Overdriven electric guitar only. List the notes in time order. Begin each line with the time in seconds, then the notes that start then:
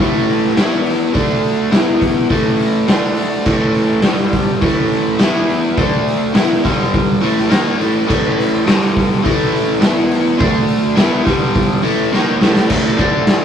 0.00 A2 E3 A3
0.57 E3 B3 E4
1.13 D3 A3 D4
1.72 E3 B3 E4
2.30 A2 E3 A3
2.88 D3 A3 D4
3.46 A2 E3 A3
4.02 G2 D3 G3
4.61 A2 E3 A3
5.19 E3 B3 E4
5.77 D3 A3 D4
6.34 E3 B3 E4
6.64 G2 D3 G3
7.21 A2 E3 A3
7.49 D#3 A#3 D#4
7.78 A2 E3 A3
8.07 A2 E3 A3
8.66 G2 D3 G3
9.23 A2 E3 A3
9.80 E3 B3 E4
10.38 D3 A3 D4
10.96 E3 B3 E4
11.24 G2 D3 G3
11.83 A2 E3 A3
12.12 D#3 A#3 D#4
12.40 A2 E3 A3
12.69 A2 E3 A3
12.98 D3 A3 D4